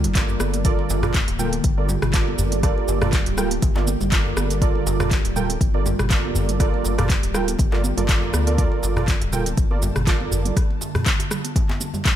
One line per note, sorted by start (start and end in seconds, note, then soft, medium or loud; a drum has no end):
0.00 12.16 D3 medium
0.00 12.16 G3 medium
0.00 12.16 A#3 medium
0.00 12.16 F4 medium
0.00 low conga loud
0.04 0.36 G1 medium
0.04 closed hi-hat soft
0.04 djembe tone medium
0.04 shaker soft
0.15 0.62 F4 medium
0.15 0.62 A4 medium
0.15 0.62 A#4 medium
0.15 0.62 D5 medium
0.15 kick loud
0.15 clap loud
0.15 closed hi-hat medium
0.15 shaker medium
0.29 muted conga soft
0.29 djembe tone medium
0.29 shaker soft
0.40 0.74 G1 medium
0.40 cross-stick medium
0.40 high conga loud
0.40 shaker medium
0.54 closed hi-hat soft
0.54 muted conga medium
0.54 high conga medium
0.54 shaker soft
0.65 1.00 F4 loud
0.65 8.57 G4 medium
0.65 1.00 A4 medium
0.65 1.00 A#4 medium
0.65 1.00 D5 loud
0.65 kick loud
0.65 closed hi-hat medium
0.65 shaker medium
0.79 muted conga medium
0.90 1.24 G1 loud
0.90 djembe slap medium
0.90 shaker medium
1.03 1.13 F4 medium
1.03 1.13 A4 medium
1.03 1.13 A#4 medium
1.03 1.13 D5 loud
1.03 cross-stick loud
1.03 mid tom medium
1.03 muted conga soft
1.03 djembe bass medium
1.03 shaker soft
1.14 kick loud
1.14 clap loud
1.14 closed hi-hat medium
1.14 shaker medium
1.28 1.60 D1 loud
1.28 closed hi-hat soft
1.28 djembe tone loud
1.28 shaker soft
1.39 1.51 F4 medium
1.39 1.51 A4 medium
1.39 1.51 A#4 medium
1.39 1.51 G5 medium
1.39 mid tom medium
1.39 muted conga medium
1.39 low conga medium
1.39 shaker medium
1.53 closed hi-hat soft
1.53 high conga medium
1.53 shaker soft
1.64 1.98 G1 medium
1.64 kick loud
1.64 closed hi-hat medium
1.64 muted conga soft
1.64 shaker medium
1.78 1.87 F4 medium
1.78 1.87 A4 medium
1.78 1.87 A#4 medium
1.78 1.87 D5 medium
1.78 high conga medium
1.89 djembe slap medium
1.89 muted conga medium
1.89 djembe tone medium
1.89 low conga medium
1.89 shaker medium
2.02 2.35 G1 loud
2.02 cross-stick loud
2.02 mid tom medium
2.02 djembe tone medium
2.02 shaker soft
2.14 2.61 F4 medium
2.14 2.61 A4 medium
2.14 2.61 A#4 medium
2.14 2.61 D5 medium
2.14 kick loud
2.14 clap loud
2.14 closed hi-hat medium
2.14 shaker medium
2.28 muted conga soft
2.28 high conga loud
2.39 2.72 G1 loud
2.39 djembe bass medium
2.39 shaker medium
2.52 closed hi-hat soft
2.52 muted conga medium
2.52 high conga medium
2.52 low conga medium
2.52 shaker soft
2.63 2.98 F4 loud
2.63 2.98 A4 medium
2.63 2.98 A#4 medium
2.63 2.98 D5 loud
2.63 kick loud
2.63 cross-stick medium
2.63 closed hi-hat medium
2.63 shaker medium
2.78 muted conga medium
2.88 3.22 G1 loud
2.88 djembe slap medium
2.88 shaker medium
3.02 3.11 F4 medium
3.02 3.11 A4 medium
3.02 3.11 A#4 medium
3.02 3.11 D5 loud
3.02 cross-stick loud
3.02 mid tom medium
3.02 muted conga soft
3.02 djembe tone medium
3.02 djembe bass medium
3.02 shaker soft
3.13 kick loud
3.13 clap loud
3.13 closed hi-hat medium
3.13 shaker medium
3.26 3.59 D1 loud
3.26 closed hi-hat soft
3.26 djembe tone loud
3.26 shaker soft
3.37 3.49 F4 medium
3.37 3.49 A4 medium
3.37 3.49 A#4 medium
3.37 3.49 G5 loud
3.37 cross-stick medium
3.37 muted conga medium
3.37 low conga medium
3.37 shaker loud
3.50 closed hi-hat soft
3.50 high conga medium
3.50 shaker soft
3.62 3.96 G1 medium
3.62 kick loud
3.62 closed hi-hat medium
3.62 muted conga soft
3.62 djembe slap medium
3.62 shaker medium
3.76 3.85 F4 medium
3.76 3.85 A4 medium
3.76 3.85 A#4 medium
3.76 3.85 D5 medium
3.76 clap soft
3.76 djembe slap loud
3.76 high conga medium
3.87 muted conga medium
3.87 high conga loud
3.87 shaker loud
4.01 4.33 G1 loud
4.01 djembe tone medium
4.01 low conga loud
4.01 shaker soft
4.12 4.59 F4 medium
4.12 4.59 A4 medium
4.12 4.59 A#4 medium
4.12 4.59 D5 medium
4.12 kick loud
4.12 clap loud
4.12 closed hi-hat medium
4.12 shaker medium
4.25 muted conga soft
4.25 djembe tone medium
4.37 4.71 G1 loud
4.37 cross-stick loud
4.37 high conga loud
4.37 shaker loud
4.50 closed hi-hat soft
4.50 muted conga medium
4.50 high conga medium
4.50 shaker soft
4.62 4.97 F4 loud
4.62 4.97 A4 medium
4.62 4.97 A#4 medium
4.62 4.97 D5 loud
4.62 kick loud
4.62 closed hi-hat medium
4.62 shaker medium
4.75 muted conga medium
4.86 5.20 G1 loud
4.86 djembe slap medium
4.86 shaker loud
5.00 5.09 F4 medium
5.00 5.09 A4 medium
5.00 5.09 A#4 medium
5.00 5.09 D5 loud
5.00 cross-stick loud
5.00 mid tom medium
5.00 muted conga soft
5.00 djembe bass medium
5.00 shaker soft
5.11 kick loud
5.11 clap loud
5.11 closed hi-hat medium
5.11 shaker medium
5.24 5.57 D1 medium
5.24 closed hi-hat soft
5.24 djembe tone medium
5.24 shaker soft
5.36 5.47 F4 medium
5.36 5.47 A4 medium
5.36 5.47 A#4 medium
5.36 5.47 G5 loud
5.36 mid tom medium
5.36 muted conga soft
5.36 low conga medium
5.36 shaker loud
5.50 closed hi-hat soft
5.50 high conga medium
5.50 shaker soft
5.61 5.95 G1 medium
5.61 kick loud
5.61 closed hi-hat medium
5.61 muted conga soft
5.61 shaker medium
5.74 5.84 F4 medium
5.74 5.84 A4 medium
5.74 5.84 A#4 medium
5.74 5.84 D5 medium
5.74 high conga medium
5.86 muted conga medium
5.86 djembe slap medium
5.86 djembe tone loud
5.86 low conga medium
5.86 shaker loud
5.99 6.32 G1 loud
5.99 cross-stick medium
5.99 mid tom medium
5.99 djembe tone medium
5.99 shaker soft
6.10 6.57 F4 medium
6.10 6.57 A4 medium
6.10 6.57 A#4 medium
6.10 6.57 D5 medium
6.10 kick loud
6.10 clap loud
6.10 closed hi-hat medium
6.10 shaker medium
6.24 muted conga soft
6.24 high conga medium
6.35 6.69 G1 loud
6.35 djembe bass medium
6.35 shaker loud
6.49 closed hi-hat soft
6.49 muted conga medium
6.49 high conga medium
6.49 low conga medium
6.49 shaker soft
6.60 6.95 F4 loud
6.60 6.95 A4 medium
6.60 6.95 A#4 medium
6.60 6.95 D5 loud
6.60 kick loud
6.60 cross-stick medium
6.60 closed hi-hat medium
6.60 shaker medium
6.74 muted conga medium
6.84 7.19 G1 loud
6.84 djembe slap medium
6.84 shaker medium
6.98 7.08 F4 medium
6.98 7.08 A4 medium
6.98 7.08 A#4 medium
6.98 7.08 D5 loud
6.98 cross-stick medium
6.98 closed hi-hat soft
6.98 mid tom loud
6.98 muted conga soft
6.98 djembe tone medium
6.98 djembe bass medium
6.98 shaker soft
7.10 kick loud
7.10 clap loud
7.10 closed hi-hat medium
7.10 shaker medium
7.23 7.56 D1 loud
7.23 closed hi-hat soft
7.23 djembe tone medium
7.23 shaker soft
7.34 7.46 F4 medium
7.34 7.46 A4 medium
7.34 7.46 A#4 medium
7.34 7.46 G5 medium
7.34 cross-stick medium
7.34 muted conga medium
7.34 low conga medium
7.34 shaker loud
7.48 closed hi-hat soft
7.48 high conga medium
7.48 shaker soft
7.59 7.93 G1 medium
7.59 kick loud
7.59 closed hi-hat medium
7.59 djembe slap medium
7.59 muted conga soft
7.59 shaker medium
7.72 7.82 F4 medium
7.72 7.82 A4 medium
7.72 7.82 A#4 medium
7.72 7.82 D5 medium
7.72 clap soft
7.72 djembe slap loud
7.72 high conga medium
7.84 muted conga medium
7.84 high conga loud
7.84 shaker medium
7.97 8.30 G1 loud
7.97 8.07 F4 medium
7.97 8.07 A4 medium
7.97 8.07 A#4 medium
7.97 8.07 D5 medium
7.97 closed hi-hat soft
7.97 djembe tone medium
7.97 low conga loud
7.97 shaker soft
8.09 8.44 F4 loud
8.09 8.44 A4 medium
8.09 8.44 A#4 medium
8.09 8.44 D5 loud
8.09 kick loud
8.09 clap loud
8.09 closed hi-hat medium
8.09 shaker medium
8.22 muted conga soft
8.22 djembe tone medium
8.34 8.67 D2 medium
8.34 cross-stick medium
8.34 high conga loud
8.34 shaker medium
8.47 8.57 F4 medium
8.47 8.57 A4 medium
8.47 8.56 A#4 medium
8.47 8.56 D5 medium
8.47 closed hi-hat soft
8.47 muted conga soft
8.47 high conga medium
8.47 shaker soft
8.58 8.93 F4 loud
8.58 8.93 A4 medium
8.58 8.93 A#4 medium
8.58 8.93 D5 loud
8.58 12.16 A5 medium
8.58 kick loud
8.58 closed hi-hat medium
8.58 shaker medium
8.72 muted conga medium
8.83 9.17 G1 loud
8.83 djembe slap medium
8.83 shaker medium
8.96 9.06 F4 medium
8.96 9.06 A4 medium
8.96 9.06 A#4 medium
8.96 9.06 D5 loud
8.96 cross-stick medium
8.96 mid tom loud
8.96 muted conga soft
8.96 djembe bass medium
8.96 shaker soft
9.08 kick loud
9.08 clap loud
9.08 closed hi-hat medium
9.08 shaker medium
9.21 9.54 D1 loud
9.21 closed hi-hat soft
9.21 djembe tone loud
9.21 shaker soft
9.32 9.44 F4 medium
9.32 9.44 A4 medium
9.32 9.44 A#4 medium
9.32 9.44 G5 loud
9.32 mid tom medium
9.32 muted conga medium
9.32 low conga medium
9.32 shaker loud
9.46 closed hi-hat soft
9.46 high conga medium
9.46 shaker soft
9.57 9.91 G1 medium
9.57 kick loud
9.57 closed hi-hat medium
9.57 muted conga soft
9.57 shaker medium
9.71 9.80 F4 medium
9.71 9.80 A4 medium
9.71 9.80 A#4 medium
9.71 9.80 D5 medium
9.71 high conga medium
9.82 muted conga medium
9.82 djembe slap medium
9.82 djembe tone loud
9.82 low conga medium
9.82 shaker medium
9.96 10.28 G1 loud
9.96 cross-stick medium
9.96 mid tom loud
9.96 djembe tone medium
9.96 shaker soft
10.07 10.54 F4 medium
10.07 10.54 A4 medium
10.07 10.54 A#4 medium
10.07 10.54 D5 medium
10.07 kick loud
10.07 clap loud
10.07 closed hi-hat medium
10.07 shaker medium
10.20 muted conga soft
10.20 high conga medium
10.32 10.52 G1 loud
10.32 djembe bass medium
10.32 shaker medium
10.45 closed hi-hat soft
10.45 muted conga medium
10.45 high conga medium
10.45 low conga medium
10.45 shaker soft
10.57 kick loud
10.57 cross-stick medium
10.57 closed hi-hat medium
10.57 shaker soft
10.70 muted conga soft
10.81 djembe slap medium
10.81 shaker medium
10.95 cross-stick medium
10.95 mid tom loud
10.95 muted conga soft
10.95 djembe tone medium
10.95 djembe bass medium
10.95 shaker soft
11.06 kick loud
11.06 clap loud
11.06 closed hi-hat medium
11.06 shaker medium
11.19 closed hi-hat soft
11.19 djembe tone medium
11.19 shaker soft
11.31 cross-stick medium
11.31 muted conga soft
11.31 low conga medium
11.31 shaker medium
11.44 closed hi-hat soft
11.44 high conga medium
11.44 shaker soft
11.56 kick loud
11.56 closed hi-hat medium
11.56 muted conga soft
11.56 djembe slap medium
11.56 shaker medium
11.69 clap soft
11.69 djembe slap loud
11.69 high conga medium
11.81 muted conga medium
11.81 high conga loud
11.81 shaker medium
11.94 djembe tone medium
11.94 low conga loud
11.94 shaker soft
12.05 kick loud
12.05 clap loud
12.05 closed hi-hat medium
12.05 shaker medium